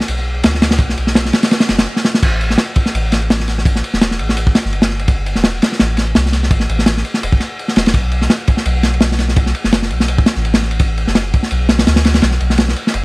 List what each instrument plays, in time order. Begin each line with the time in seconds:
0.00 snare
0.08 sub bass B1, ride
0.43 sub bass D2, snare, ride
0.55 snare
0.62 snare, ride
0.71 snare, ride
0.79 sub bass B1, kick, ride
0.89 snare
0.97 sub bass B1, ride
1.07 snare
1.15 snare, ride
1.25 snare
1.33 snare, ride
1.43 snare, ride
1.51 snare, ride
1.60 snare, ride
1.69 sub bass F#1, snare, ride
1.78 snare, ride
1.96 snare
2.05 snare
2.14 snare
2.23 sub bass A1, kick, crash, ride
2.41 ride
2.50 snare
2.58 snare, ride
2.76 kick, ride
2.86 snare
2.94 sub bass A1, ride
3.12 snare, ride
3.22 ride
3.30 snare, ride
3.40 snare
3.48 snare, ride
3.58 snare
3.65 kick, ride
3.76 snare
3.84 ride
3.93 sub bass E1, snare
4.01 snare, ride
4.11 snare
4.19 sub bass A1, ride
4.29 snare
4.37 ride
4.47 kick
4.55 snare, ride
4.65 sub bass G1, snare
4.73 ride
4.82 snare, ride
4.90 snare
4.99 ride
5.08 kick, ride
5.26 ride
5.35 sub bass E1, snare
5.44 snare, ride
5.62 snare, ride
5.72 snare
5.79 sub bass A1, snare, ride
5.97 snare, ride
6.07 ride
6.15 sub bass C2, snare, ride
6.26 snare
6.32 snare, ride
6.43 snare
6.51 sub bass A1, kick, ride
6.60 snare
6.69 sub bass A1, ride
6.79 snare
6.86 snare, ride
6.97 snare
7.05 ride
7.14 snare
7.23 sub bass E1, ride
7.32 kick
7.40 snare, ride
7.59 ride
7.68 snare
7.76 sub bass E1, snare, ride
7.86 snare, ride
7.94 sub bass B1, kick, ride
8.12 ride
8.21 snare
8.30 snare, ride
8.47 kick, ride
8.57 snare
8.65 sub bass B1, ride
8.83 snare, ride
8.94 ride
9.01 snare, ride
9.12 snare
9.19 snare, ride
9.29 snare
9.36 kick, ride
9.46 snare
9.55 ride
9.64 sub bass F#1, snare
9.72 snare, ride
9.82 snare
9.90 sub bass B1, ride
10.00 snare
10.08 ride
10.18 kick
10.26 snare, ride
10.35 sub bass A1, snare
10.45 ride
10.54 snare, ride
10.62 snare
10.71 ride
10.79 kick, ride
10.98 ride
11.07 sub bass F#1, snare
11.15 snare, ride
11.34 kick, ride
11.43 snare
11.51 sub bass B1, ride
11.69 snare, ride
11.79 snare, ride
11.87 sub bass D2, snare, ride
11.96 snare, ride
12.05 snare, ride
12.14 snare, ride
12.22 sub bass B1, snare, ride
12.31 snare
12.40 sub bass B1, ride
12.50 snare
12.58 snare, ride
12.68 snare
12.76 ride
12.87 snare
12.94 sub bass F#1, ride